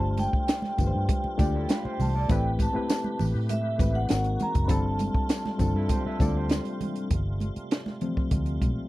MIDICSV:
0, 0, Header, 1, 8, 480
1, 0, Start_track
1, 0, Tempo, 603015
1, 1824, Time_signature, 4, 2, 24, 8
1, 7072, End_track
2, 0, Start_track
2, 0, Title_t, "Vibraphone"
2, 0, Program_c, 0, 11
2, 0, Note_on_c, 0, 81, 100
2, 154, Note_on_c, 0, 79, 101
2, 165, Note_off_c, 0, 81, 0
2, 1604, Note_on_c, 0, 81, 90
2, 1631, Note_off_c, 0, 79, 0
2, 1818, Note_off_c, 0, 81, 0
2, 1848, Note_on_c, 0, 79, 94
2, 1950, Note_off_c, 0, 79, 0
2, 2089, Note_on_c, 0, 81, 88
2, 2524, Note_off_c, 0, 81, 0
2, 2788, Note_on_c, 0, 76, 92
2, 3147, Note_on_c, 0, 78, 107
2, 3156, Note_off_c, 0, 76, 0
2, 3515, Note_off_c, 0, 78, 0
2, 3522, Note_on_c, 0, 82, 109
2, 3684, Note_off_c, 0, 82, 0
2, 3697, Note_on_c, 0, 83, 70
2, 3747, Note_off_c, 0, 83, 0
2, 3763, Note_on_c, 0, 81, 103
2, 5160, Note_off_c, 0, 81, 0
2, 7072, End_track
3, 0, Start_track
3, 0, Title_t, "Clean electric guitar"
3, 0, Program_c, 1, 27
3, 1107, Note_on_c, 1, 67, 70
3, 1110, Note_on_c, 1, 62, 57
3, 1220, Note_off_c, 1, 67, 0
3, 1222, Note_off_c, 1, 62, 0
3, 1229, Note_on_c, 1, 69, 77
3, 1237, Note_on_c, 1, 64, 62
3, 1341, Note_off_c, 1, 69, 0
3, 1345, Note_off_c, 1, 64, 0
3, 1349, Note_on_c, 1, 71, 82
3, 1353, Note_on_c, 1, 65, 69
3, 1461, Note_off_c, 1, 71, 0
3, 1463, Note_off_c, 1, 65, 0
3, 1474, Note_on_c, 1, 72, 77
3, 1481, Note_on_c, 1, 67, 64
3, 1697, Note_off_c, 1, 72, 0
3, 1701, Note_off_c, 1, 67, 0
3, 1716, Note_on_c, 1, 74, 73
3, 1722, Note_on_c, 1, 69, 65
3, 1938, Note_off_c, 1, 74, 0
3, 1941, Note_off_c, 1, 69, 0
3, 4584, Note_on_c, 1, 69, 74
3, 4588, Note_on_c, 1, 64, 63
3, 4695, Note_off_c, 1, 64, 0
3, 4697, Note_off_c, 1, 69, 0
3, 4698, Note_on_c, 1, 72, 75
3, 4705, Note_on_c, 1, 67, 65
3, 4814, Note_off_c, 1, 72, 0
3, 4817, Note_off_c, 1, 67, 0
3, 4826, Note_on_c, 1, 76, 79
3, 4831, Note_on_c, 1, 71, 68
3, 4938, Note_off_c, 1, 76, 0
3, 4941, Note_off_c, 1, 71, 0
3, 4945, Note_on_c, 1, 74, 73
3, 4951, Note_on_c, 1, 69, 60
3, 5058, Note_off_c, 1, 74, 0
3, 5060, Note_off_c, 1, 69, 0
3, 5068, Note_on_c, 1, 67, 55
3, 5070, Note_on_c, 1, 72, 57
3, 5635, Note_off_c, 1, 72, 0
3, 5636, Note_off_c, 1, 67, 0
3, 7072, End_track
4, 0, Start_track
4, 0, Title_t, "Reed electric piano"
4, 0, Program_c, 2, 4
4, 0, Note_on_c, 2, 57, 100
4, 0, Note_on_c, 2, 62, 92
4, 0, Note_on_c, 2, 65, 90
4, 0, Note_on_c, 2, 67, 94
4, 0, Note_on_c, 2, 72, 109
4, 37, Control_c, 2, 64, 127
4, 561, Note_off_c, 2, 57, 0
4, 563, Note_off_c, 2, 62, 0
4, 565, Note_off_c, 2, 65, 0
4, 569, Note_off_c, 2, 67, 0
4, 573, Note_off_c, 2, 72, 0
4, 619, Note_on_c, 2, 57, 74
4, 628, Note_on_c, 2, 62, 65
4, 635, Note_on_c, 2, 65, 63
4, 639, Note_on_c, 2, 67, 65
4, 644, Note_on_c, 2, 71, 59
4, 687, Note_off_c, 2, 71, 0
4, 693, Note_on_c, 2, 72, 76
4, 1064, Note_off_c, 2, 57, 0
4, 1068, Note_off_c, 2, 62, 0
4, 1071, Note_off_c, 2, 65, 0
4, 1073, Note_off_c, 2, 67, 0
4, 1092, Note_on_c, 2, 57, 85
4, 1098, Note_on_c, 2, 62, 80
4, 1100, Note_off_c, 2, 72, 0
4, 1103, Note_on_c, 2, 65, 82
4, 1109, Note_on_c, 2, 67, 76
4, 1120, Note_on_c, 2, 74, 93
4, 1760, Note_off_c, 2, 57, 0
4, 1763, Note_off_c, 2, 62, 0
4, 1765, Note_off_c, 2, 65, 0
4, 1768, Note_off_c, 2, 67, 0
4, 1774, Note_off_c, 2, 74, 0
4, 1820, Note_on_c, 2, 57, 98
4, 1827, Note_on_c, 2, 60, 91
4, 1835, Control_c, 2, 64, 0
4, 1835, Note_on_c, 2, 64, 99
4, 1841, Note_on_c, 2, 67, 94
4, 1846, Note_on_c, 2, 71, 112
4, 1976, Control_c, 2, 64, 127
4, 2153, Note_off_c, 2, 57, 0
4, 2156, Note_off_c, 2, 60, 0
4, 2160, Note_off_c, 2, 64, 0
4, 2163, Note_off_c, 2, 67, 0
4, 2166, Note_off_c, 2, 71, 0
4, 2172, Note_on_c, 2, 57, 83
4, 2176, Note_on_c, 2, 60, 75
4, 2189, Note_on_c, 2, 64, 74
4, 2189, Note_on_c, 2, 67, 78
4, 2197, Note_on_c, 2, 71, 85
4, 2950, Note_off_c, 2, 57, 0
4, 2952, Note_off_c, 2, 60, 0
4, 2958, Note_off_c, 2, 64, 0
4, 2958, Note_off_c, 2, 67, 0
4, 2962, Note_off_c, 2, 71, 0
4, 3009, Note_on_c, 2, 57, 78
4, 3017, Note_on_c, 2, 60, 67
4, 3020, Note_on_c, 2, 64, 64
4, 3027, Note_on_c, 2, 67, 66
4, 3034, Note_on_c, 2, 71, 84
4, 3245, Note_off_c, 2, 60, 0
4, 3249, Note_on_c, 2, 56, 76
4, 3255, Note_off_c, 2, 57, 0
4, 3255, Note_on_c, 2, 60, 75
4, 3261, Note_off_c, 2, 64, 0
4, 3262, Note_on_c, 2, 63, 68
4, 3264, Note_off_c, 2, 67, 0
4, 3264, Note_on_c, 2, 66, 66
4, 3268, Note_off_c, 2, 71, 0
4, 3272, Note_on_c, 2, 70, 86
4, 3273, Control_c, 2, 64, 0
4, 3394, Control_c, 2, 64, 127
4, 3697, Note_off_c, 2, 56, 0
4, 3700, Note_off_c, 2, 60, 0
4, 3703, Note_off_c, 2, 63, 0
4, 3705, Note_off_c, 2, 66, 0
4, 3709, Note_off_c, 2, 70, 0
4, 3720, Note_on_c, 2, 55, 99
4, 3725, Note_on_c, 2, 60, 93
4, 3727, Note_on_c, 2, 62, 89
4, 3737, Note_on_c, 2, 65, 89
4, 3746, Note_on_c, 2, 69, 111
4, 3752, Control_c, 2, 64, 0
4, 3887, Control_c, 2, 64, 127
4, 4393, Note_off_c, 2, 55, 0
4, 4396, Note_off_c, 2, 60, 0
4, 4397, Note_off_c, 2, 62, 0
4, 4402, Note_off_c, 2, 65, 0
4, 4406, Note_off_c, 2, 69, 0
4, 4444, Note_on_c, 2, 55, 81
4, 4448, Note_on_c, 2, 60, 72
4, 4457, Note_on_c, 2, 62, 78
4, 4460, Note_on_c, 2, 65, 75
4, 4468, Note_on_c, 2, 69, 88
4, 4895, Note_off_c, 2, 55, 0
4, 4896, Note_off_c, 2, 60, 0
4, 4901, Note_off_c, 2, 62, 0
4, 4902, Note_off_c, 2, 65, 0
4, 4906, Note_off_c, 2, 69, 0
4, 4927, Note_on_c, 2, 55, 79
4, 4935, Note_on_c, 2, 60, 75
4, 4937, Note_on_c, 2, 62, 75
4, 4942, Note_on_c, 2, 65, 77
4, 4948, Note_on_c, 2, 69, 95
4, 5597, Note_off_c, 2, 55, 0
4, 5601, Note_off_c, 2, 60, 0
4, 5602, Note_off_c, 2, 62, 0
4, 5605, Note_off_c, 2, 65, 0
4, 5608, Note_off_c, 2, 69, 0
4, 5672, Control_c, 2, 64, 0
4, 5814, Control_c, 2, 64, 127
4, 6380, Note_on_c, 2, 53, 55
4, 6381, Note_on_c, 2, 57, 51
4, 6387, Note_on_c, 2, 60, 59
4, 6701, Note_off_c, 2, 53, 0
4, 6702, Note_off_c, 2, 57, 0
4, 6705, Note_off_c, 2, 60, 0
4, 7072, End_track
5, 0, Start_track
5, 0, Title_t, "Tonewheel organ"
5, 0, Program_c, 3, 16
5, 0, Note_on_c, 3, 55, 61
5, 0, Note_on_c, 3, 57, 63
5, 0, Note_on_c, 3, 65, 77
5, 1808, Note_off_c, 3, 65, 0
5, 1810, Note_off_c, 3, 55, 0
5, 1823, Note_on_c, 3, 67, 75
5, 1825, Note_on_c, 3, 71, 66
5, 3235, Note_off_c, 3, 57, 0
5, 3248, Note_off_c, 3, 67, 0
5, 3248, Note_off_c, 3, 71, 0
5, 3263, Note_on_c, 3, 66, 84
5, 3264, Note_on_c, 3, 58, 72
5, 3266, Note_on_c, 3, 56, 70
5, 3738, Note_off_c, 3, 58, 0
5, 3738, Note_off_c, 3, 66, 0
5, 3739, Note_off_c, 3, 56, 0
5, 3741, Note_on_c, 3, 55, 66
5, 3746, Note_on_c, 3, 57, 67
5, 3747, Note_on_c, 3, 65, 81
5, 5642, Note_off_c, 3, 55, 0
5, 5645, Note_off_c, 3, 57, 0
5, 5645, Note_off_c, 3, 65, 0
5, 5677, Note_on_c, 3, 48, 63
5, 5678, Note_on_c, 3, 55, 58
5, 5680, Note_on_c, 3, 57, 58
5, 5684, Note_on_c, 3, 65, 75
5, 7072, Note_off_c, 3, 48, 0
5, 7072, Note_off_c, 3, 55, 0
5, 7072, Note_off_c, 3, 57, 0
5, 7072, Note_off_c, 3, 65, 0
5, 7072, End_track
6, 0, Start_track
6, 0, Title_t, "Fingered electric bass"
6, 0, Program_c, 4, 33
6, 0, Note_on_c, 4, 31, 97
6, 209, Note_off_c, 4, 31, 0
6, 627, Note_on_c, 4, 31, 89
6, 727, Note_off_c, 4, 31, 0
6, 753, Note_on_c, 4, 43, 102
6, 851, Note_off_c, 4, 43, 0
6, 1109, Note_on_c, 4, 38, 83
6, 1310, Note_off_c, 4, 38, 0
6, 1588, Note_on_c, 4, 36, 98
6, 1789, Note_off_c, 4, 36, 0
6, 1826, Note_on_c, 4, 33, 100
6, 2129, Note_off_c, 4, 33, 0
6, 2551, Note_on_c, 4, 33, 90
6, 2649, Note_off_c, 4, 33, 0
6, 2666, Note_on_c, 4, 45, 95
6, 3024, Note_on_c, 4, 33, 93
6, 3036, Note_off_c, 4, 45, 0
6, 3226, Note_off_c, 4, 33, 0
6, 3271, Note_on_c, 4, 32, 106
6, 3470, Note_off_c, 4, 32, 0
6, 3625, Note_on_c, 4, 30, 90
6, 3737, Note_off_c, 4, 30, 0
6, 3737, Note_on_c, 4, 31, 97
6, 4043, Note_off_c, 4, 31, 0
6, 4452, Note_on_c, 4, 31, 77
6, 4557, Note_off_c, 4, 31, 0
6, 4575, Note_on_c, 4, 43, 94
6, 4679, Note_off_c, 4, 43, 0
6, 4937, Note_on_c, 4, 38, 93
6, 5243, Note_off_c, 4, 38, 0
6, 5659, Note_on_c, 4, 31, 94
6, 5965, Note_off_c, 4, 31, 0
6, 6618, Note_on_c, 4, 38, 90
6, 6823, Note_off_c, 4, 38, 0
6, 6858, Note_on_c, 4, 35, 79
6, 6962, Note_off_c, 4, 35, 0
6, 7072, End_track
7, 0, Start_track
7, 0, Title_t, "Muted fingered electric bass strokes"
7, 267, Note_on_c, 9, 29, 49
7, 347, Note_off_c, 9, 29, 0
7, 990, Note_on_c, 9, 29, 50
7, 1069, Note_off_c, 9, 29, 0
7, 1472, Note_on_c, 9, 29, 49
7, 1551, Note_off_c, 9, 29, 0
7, 2192, Note_on_c, 9, 29, 49
7, 2272, Note_off_c, 9, 29, 0
7, 4096, Note_on_c, 9, 29, 49
7, 4176, Note_off_c, 9, 29, 0
7, 4820, Note_on_c, 9, 29, 49
7, 4900, Note_off_c, 9, 29, 0
7, 6022, Note_on_c, 9, 29, 43
7, 6102, Note_off_c, 9, 29, 0
7, 7072, End_track
8, 0, Start_track
8, 0, Title_t, "Drums"
8, 139, Note_on_c, 9, 42, 75
8, 140, Note_on_c, 9, 63, 79
8, 159, Note_on_c, 9, 54, 46
8, 218, Note_off_c, 9, 42, 0
8, 220, Note_off_c, 9, 63, 0
8, 238, Note_off_c, 9, 54, 0
8, 265, Note_on_c, 9, 36, 87
8, 344, Note_off_c, 9, 36, 0
8, 384, Note_on_c, 9, 42, 100
8, 387, Note_on_c, 9, 62, 31
8, 391, Note_on_c, 9, 38, 119
8, 394, Note_on_c, 9, 54, 85
8, 463, Note_off_c, 9, 42, 0
8, 467, Note_off_c, 9, 62, 0
8, 470, Note_off_c, 9, 38, 0
8, 474, Note_off_c, 9, 54, 0
8, 495, Note_on_c, 9, 63, 73
8, 508, Note_on_c, 9, 38, 37
8, 575, Note_off_c, 9, 63, 0
8, 587, Note_off_c, 9, 38, 0
8, 624, Note_on_c, 9, 36, 85
8, 624, Note_on_c, 9, 42, 59
8, 626, Note_on_c, 9, 64, 77
8, 637, Note_on_c, 9, 54, 50
8, 703, Note_off_c, 9, 42, 0
8, 704, Note_off_c, 9, 36, 0
8, 705, Note_off_c, 9, 64, 0
8, 717, Note_off_c, 9, 54, 0
8, 865, Note_on_c, 9, 63, 62
8, 866, Note_on_c, 9, 36, 101
8, 866, Note_on_c, 9, 42, 98
8, 945, Note_off_c, 9, 63, 0
8, 946, Note_off_c, 9, 36, 0
8, 946, Note_off_c, 9, 42, 0
8, 986, Note_on_c, 9, 62, 35
8, 1066, Note_off_c, 9, 62, 0
8, 1107, Note_on_c, 9, 36, 100
8, 1108, Note_on_c, 9, 63, 76
8, 1109, Note_on_c, 9, 42, 79
8, 1112, Note_on_c, 9, 54, 52
8, 1186, Note_off_c, 9, 36, 0
8, 1187, Note_off_c, 9, 63, 0
8, 1189, Note_off_c, 9, 42, 0
8, 1191, Note_off_c, 9, 54, 0
8, 1345, Note_on_c, 9, 42, 94
8, 1351, Note_on_c, 9, 62, 33
8, 1351, Note_on_c, 9, 63, 54
8, 1352, Note_on_c, 9, 54, 90
8, 1357, Note_on_c, 9, 38, 114
8, 1424, Note_off_c, 9, 42, 0
8, 1430, Note_off_c, 9, 62, 0
8, 1430, Note_off_c, 9, 63, 0
8, 1432, Note_off_c, 9, 54, 0
8, 1437, Note_off_c, 9, 38, 0
8, 1475, Note_on_c, 9, 62, 27
8, 1554, Note_off_c, 9, 62, 0
8, 1590, Note_on_c, 9, 63, 70
8, 1590, Note_on_c, 9, 64, 65
8, 1593, Note_on_c, 9, 46, 47
8, 1595, Note_on_c, 9, 54, 37
8, 1670, Note_off_c, 9, 63, 0
8, 1670, Note_off_c, 9, 64, 0
8, 1672, Note_off_c, 9, 46, 0
8, 1675, Note_off_c, 9, 54, 0
8, 1826, Note_on_c, 9, 42, 98
8, 1827, Note_on_c, 9, 36, 127
8, 1827, Note_on_c, 9, 64, 70
8, 1834, Note_on_c, 9, 54, 54
8, 1906, Note_off_c, 9, 36, 0
8, 1906, Note_off_c, 9, 42, 0
8, 1906, Note_off_c, 9, 64, 0
8, 1914, Note_off_c, 9, 54, 0
8, 2061, Note_on_c, 9, 36, 88
8, 2066, Note_on_c, 9, 63, 83
8, 2068, Note_on_c, 9, 42, 73
8, 2071, Note_on_c, 9, 54, 46
8, 2141, Note_off_c, 9, 36, 0
8, 2146, Note_off_c, 9, 63, 0
8, 2147, Note_off_c, 9, 42, 0
8, 2151, Note_off_c, 9, 54, 0
8, 2304, Note_on_c, 9, 42, 98
8, 2305, Note_on_c, 9, 54, 87
8, 2310, Note_on_c, 9, 62, 32
8, 2312, Note_on_c, 9, 38, 109
8, 2384, Note_off_c, 9, 42, 0
8, 2384, Note_off_c, 9, 54, 0
8, 2389, Note_off_c, 9, 62, 0
8, 2391, Note_off_c, 9, 38, 0
8, 2422, Note_on_c, 9, 63, 79
8, 2502, Note_off_c, 9, 63, 0
8, 2542, Note_on_c, 9, 46, 43
8, 2542, Note_on_c, 9, 64, 83
8, 2551, Note_on_c, 9, 54, 53
8, 2622, Note_off_c, 9, 46, 0
8, 2622, Note_off_c, 9, 64, 0
8, 2631, Note_off_c, 9, 54, 0
8, 2780, Note_on_c, 9, 42, 104
8, 2788, Note_on_c, 9, 62, 28
8, 2788, Note_on_c, 9, 63, 62
8, 2859, Note_off_c, 9, 42, 0
8, 2868, Note_off_c, 9, 62, 0
8, 2868, Note_off_c, 9, 63, 0
8, 3020, Note_on_c, 9, 36, 103
8, 3023, Note_on_c, 9, 42, 73
8, 3028, Note_on_c, 9, 54, 53
8, 3030, Note_on_c, 9, 63, 70
8, 3099, Note_off_c, 9, 36, 0
8, 3103, Note_off_c, 9, 42, 0
8, 3107, Note_off_c, 9, 54, 0
8, 3109, Note_off_c, 9, 63, 0
8, 3253, Note_on_c, 9, 42, 97
8, 3265, Note_on_c, 9, 38, 116
8, 3268, Note_on_c, 9, 62, 31
8, 3268, Note_on_c, 9, 63, 50
8, 3270, Note_on_c, 9, 54, 93
8, 3332, Note_off_c, 9, 42, 0
8, 3345, Note_off_c, 9, 38, 0
8, 3347, Note_off_c, 9, 62, 0
8, 3347, Note_off_c, 9, 63, 0
8, 3350, Note_off_c, 9, 54, 0
8, 3377, Note_on_c, 9, 42, 53
8, 3392, Note_on_c, 9, 62, 27
8, 3457, Note_off_c, 9, 42, 0
8, 3472, Note_off_c, 9, 62, 0
8, 3499, Note_on_c, 9, 42, 64
8, 3507, Note_on_c, 9, 54, 36
8, 3508, Note_on_c, 9, 63, 71
8, 3508, Note_on_c, 9, 64, 68
8, 3579, Note_off_c, 9, 42, 0
8, 3587, Note_off_c, 9, 54, 0
8, 3587, Note_off_c, 9, 63, 0
8, 3587, Note_off_c, 9, 64, 0
8, 3619, Note_on_c, 9, 42, 60
8, 3622, Note_on_c, 9, 36, 93
8, 3699, Note_off_c, 9, 42, 0
8, 3702, Note_off_c, 9, 36, 0
8, 3732, Note_on_c, 9, 42, 97
8, 3736, Note_on_c, 9, 36, 121
8, 3739, Note_on_c, 9, 54, 55
8, 3741, Note_on_c, 9, 64, 71
8, 3812, Note_off_c, 9, 42, 0
8, 3816, Note_off_c, 9, 36, 0
8, 3818, Note_off_c, 9, 54, 0
8, 3820, Note_off_c, 9, 64, 0
8, 3973, Note_on_c, 9, 42, 80
8, 3979, Note_on_c, 9, 54, 47
8, 3983, Note_on_c, 9, 63, 79
8, 4052, Note_off_c, 9, 42, 0
8, 4058, Note_off_c, 9, 54, 0
8, 4063, Note_off_c, 9, 63, 0
8, 4095, Note_on_c, 9, 36, 87
8, 4174, Note_off_c, 9, 36, 0
8, 4212, Note_on_c, 9, 42, 105
8, 4219, Note_on_c, 9, 38, 110
8, 4222, Note_on_c, 9, 54, 86
8, 4291, Note_off_c, 9, 42, 0
8, 4298, Note_off_c, 9, 38, 0
8, 4302, Note_off_c, 9, 54, 0
8, 4340, Note_on_c, 9, 38, 37
8, 4342, Note_on_c, 9, 62, 35
8, 4342, Note_on_c, 9, 63, 78
8, 4420, Note_off_c, 9, 38, 0
8, 4422, Note_off_c, 9, 62, 0
8, 4422, Note_off_c, 9, 63, 0
8, 4451, Note_on_c, 9, 42, 60
8, 4453, Note_on_c, 9, 36, 81
8, 4462, Note_on_c, 9, 64, 78
8, 4463, Note_on_c, 9, 54, 46
8, 4531, Note_off_c, 9, 42, 0
8, 4532, Note_off_c, 9, 36, 0
8, 4541, Note_off_c, 9, 64, 0
8, 4542, Note_off_c, 9, 54, 0
8, 4689, Note_on_c, 9, 42, 102
8, 4692, Note_on_c, 9, 36, 92
8, 4695, Note_on_c, 9, 54, 36
8, 4700, Note_on_c, 9, 62, 27
8, 4700, Note_on_c, 9, 63, 61
8, 4768, Note_off_c, 9, 42, 0
8, 4772, Note_off_c, 9, 36, 0
8, 4775, Note_off_c, 9, 54, 0
8, 4780, Note_off_c, 9, 62, 0
8, 4780, Note_off_c, 9, 63, 0
8, 4934, Note_on_c, 9, 36, 102
8, 4940, Note_on_c, 9, 42, 79
8, 4942, Note_on_c, 9, 63, 75
8, 4949, Note_on_c, 9, 54, 54
8, 5014, Note_off_c, 9, 36, 0
8, 5019, Note_off_c, 9, 42, 0
8, 5022, Note_off_c, 9, 63, 0
8, 5029, Note_off_c, 9, 54, 0
8, 5169, Note_on_c, 9, 42, 98
8, 5176, Note_on_c, 9, 62, 32
8, 5176, Note_on_c, 9, 63, 50
8, 5182, Note_on_c, 9, 38, 116
8, 5189, Note_on_c, 9, 54, 86
8, 5249, Note_off_c, 9, 42, 0
8, 5256, Note_off_c, 9, 62, 0
8, 5256, Note_off_c, 9, 63, 0
8, 5261, Note_off_c, 9, 38, 0
8, 5269, Note_off_c, 9, 54, 0
8, 5294, Note_on_c, 9, 42, 52
8, 5307, Note_on_c, 9, 62, 27
8, 5374, Note_off_c, 9, 42, 0
8, 5387, Note_off_c, 9, 62, 0
8, 5418, Note_on_c, 9, 63, 70
8, 5418, Note_on_c, 9, 64, 68
8, 5419, Note_on_c, 9, 42, 62
8, 5498, Note_off_c, 9, 63, 0
8, 5498, Note_off_c, 9, 64, 0
8, 5499, Note_off_c, 9, 42, 0
8, 5537, Note_on_c, 9, 42, 53
8, 5616, Note_off_c, 9, 42, 0
8, 5655, Note_on_c, 9, 42, 94
8, 5655, Note_on_c, 9, 62, 30
8, 5655, Note_on_c, 9, 64, 66
8, 5657, Note_on_c, 9, 36, 112
8, 5735, Note_off_c, 9, 42, 0
8, 5735, Note_off_c, 9, 62, 0
8, 5735, Note_off_c, 9, 64, 0
8, 5736, Note_off_c, 9, 36, 0
8, 5893, Note_on_c, 9, 63, 69
8, 5899, Note_on_c, 9, 42, 74
8, 5973, Note_off_c, 9, 63, 0
8, 5979, Note_off_c, 9, 42, 0
8, 6019, Note_on_c, 9, 42, 46
8, 6099, Note_off_c, 9, 42, 0
8, 6139, Note_on_c, 9, 42, 89
8, 6146, Note_on_c, 9, 38, 105
8, 6218, Note_off_c, 9, 42, 0
8, 6225, Note_off_c, 9, 38, 0
8, 6257, Note_on_c, 9, 62, 33
8, 6257, Note_on_c, 9, 63, 68
8, 6263, Note_on_c, 9, 38, 36
8, 6336, Note_off_c, 9, 62, 0
8, 6336, Note_off_c, 9, 63, 0
8, 6343, Note_off_c, 9, 38, 0
8, 6376, Note_on_c, 9, 42, 57
8, 6382, Note_on_c, 9, 64, 70
8, 6455, Note_off_c, 9, 42, 0
8, 6461, Note_off_c, 9, 64, 0
8, 6503, Note_on_c, 9, 36, 79
8, 6583, Note_off_c, 9, 36, 0
8, 6615, Note_on_c, 9, 42, 89
8, 6617, Note_on_c, 9, 36, 90
8, 6625, Note_on_c, 9, 63, 56
8, 6694, Note_off_c, 9, 42, 0
8, 6696, Note_off_c, 9, 36, 0
8, 6704, Note_off_c, 9, 63, 0
8, 6732, Note_on_c, 9, 42, 45
8, 6742, Note_on_c, 9, 62, 29
8, 6812, Note_off_c, 9, 42, 0
8, 6822, Note_off_c, 9, 62, 0
8, 6858, Note_on_c, 9, 36, 89
8, 6861, Note_on_c, 9, 42, 74
8, 6863, Note_on_c, 9, 63, 65
8, 6938, Note_off_c, 9, 36, 0
8, 6940, Note_off_c, 9, 42, 0
8, 6943, Note_off_c, 9, 63, 0
8, 7072, End_track
0, 0, End_of_file